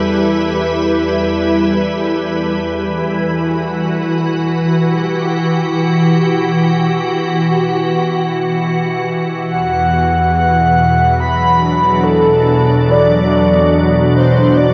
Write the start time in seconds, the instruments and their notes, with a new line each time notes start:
Already playing: ambient pad E2 G3 E4 A4 B4
2.73 synth drone B2 E3, ambient pad E3
3.24 ambient pad F#4
4.80 ambient pad G4
9.50 ambient pad E2, soft synth lead F#5
10.25 ambient pad B2
10.34 soft synth lead F#5
11.04 ambient pad F#3
11.20 soft synth lead B5
11.40 ambient pad D4
12.03 soft synth lead A4
12.91 soft synth lead D5
14.16 soft synth lead C5
14.57 soft synth lead D5